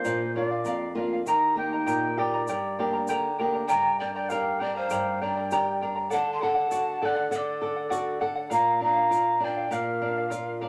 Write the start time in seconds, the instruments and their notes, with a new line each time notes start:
Already playing: nylon-string guitar A#3 D4 F4, quena C5
0.05 nylon-string guitar A#2, charango A#4 D5 F5, shaker
0.35 nylon-string guitar A#3 D4 F4, charango A#4 D5 F5, quena D5
0.51 charango D5 F5
0.65 nylon-string guitar F2, charango A#4 D5 F5, shaker
0.95 nylon-string guitar A#3 D4 F4, charango A#4 D5 F5
1.13 charango D5 F5
1.26 nylon-string guitar D#3, charango G4 A#4 D#5 G5 A#5, quena A#5, shaker
1.56 nylon-string guitar A#3 D#4 G4, charango A#4 D#5 G5 A#5, quena G5
1.72 charango A#4 D#5 A#5, quena G5
1.86 nylon-string guitar A#2, charango G4 A#4 D#5 G5 A#5, shaker
2.17 nylon-string guitar A#3 D#4 G4, charango A#4 D#5 G5 A#5, quena D5
2.34 charango A#4 D#5 A#5
2.47 nylon-string guitar G2, charango G4 A#4 D5 G5 A#5, shaker
2.79 nylon-string guitar A#3 D4 G4, charango A#4 D5 G5 A#5
2.93 charango A#4 D5 A#5
3.08 nylon-string guitar D3, charango G4 A#4 D5 G5 A#5, shaker
3.39 nylon-string guitar A#3 D4 G4, charango A#4 D5 G5 A#5
3.54 charango A#4 D5 A#5
3.68 nylon-string guitar G2, charango G4 A#4 D5 G5 A#5, pan flute G5, quena A#5, shaker
3.99 nylon-string guitar D4, charango A#4 D5 G5 A#5, pan flute D5, quena G5
4.14 charango A#4 D5 A#5, pan flute D5, quena G5
4.29 charango G4 A#4 D5 G5 A#5, nylon-string guitar G4, pan flute A#4, quena F5, shaker
4.59 nylon-string guitar D4, charango A#4 D5 G5 A#5, pan flute D5, quena G5
4.75 charango A#4 D5 A#5, pan flute C5, quena F5
4.90 nylon-string guitar G2, charango G4 A#4 D5 G5 A#5, shaker
5.21 nylon-string guitar D4, charango A#4 D5 G5 A#5, pan flute D5, quena G5
5.37 charango A#4 D5 A#5
5.51 nylon-string guitar G4, charango G4 A#4 D5 G5 A#5, shaker
5.81 nylon-string guitar D4, charango A#4 D5 G5 A#5
5.96 charango A#4 D5 A#5
6.10 nylon-string guitar D3, charango A4 D5 F#5, pan flute F#5, quena A5, shaker
6.32 pan flute A5, quena C6
6.39 charango A4 D5 F#5, nylon-string guitar A4, pan flute F#5
6.44 quena A5
6.55 charango D5 F#5
6.71 nylon-string guitar F#4, charango A4 D5 F#5, shaker
7.01 charango A4 D5 F#5, nylon-string guitar A4, pan flute D5, quena F#5
7.16 charango D5 F#5
7.31 nylon-string guitar D3, charango A4 D5 F#5, pan flute A4, shaker
7.36 quena D5
7.61 charango A4 D5 F#5, nylon-string guitar A4
7.76 charango D5 F#5
7.89 nylon-string guitar F#4, charango A4 D5 F#5, shaker
8.19 charango A4 D5 F#5, nylon-string guitar A4
8.35 charango D5 F#5
8.50 nylon-string guitar A#2, charango A#4 D5 F5, pan flute F5, quena A#5, shaker
8.80 nylon-string guitar D4, charango A#4 D5 F5, quena A#5
8.84 pan flute F5
8.96 charango D5 F5
9.10 nylon-string guitar F4, charango A#4 D5 F5, shaker
9.39 nylon-string guitar D4, charango A#4 D5 F5, pan flute D5
9.44 quena G5
9.56 charango D5 F5
9.71 nylon-string guitar A#2, charango A#4 D5 F5, pan flute A#4, quena F5, shaker
10.02 nylon-string guitar D4, charango A#4 D5 F5
10.17 charango D5 F5
10.30 nylon-string guitar F4, charango A#4 D5 F5, shaker
10.61 nylon-string guitar D4, charango A#4 D5 F5